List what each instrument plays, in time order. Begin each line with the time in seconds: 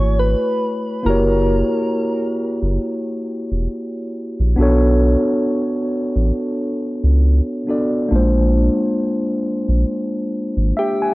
Already playing: tine electric piano A3 E4 F#4 C#5 G#5, soft synth lead C#5
0.00 analog synth bass G#1
0.19 soft synth lead B4
1.03 analog synth bass F#1, tine electric piano A#3 E4 F#4, soft synth lead A#4
1.08 tine electric piano G4 C#5
2.63 analog synth bass F#1
3.52 analog synth bass E1
4.40 analog synth bass A#1
4.56 analog synth bass B1, tine electric piano B3 D4 F#4
4.61 tine electric piano A4 C#5
6.16 analog synth bass A1
7.04 analog synth bass C#2
7.67 tine electric piano B3 D4 F#4 A4 D5
8.09 analog synth bass A#1, tine electric piano A#3 D4 F4
8.14 tine electric piano G#3 C5
9.69 analog synth bass A#1
10.57 analog synth bass G#1
10.77 soft synth lead G4, tine electric piano E5
11.02 tine electric piano G#5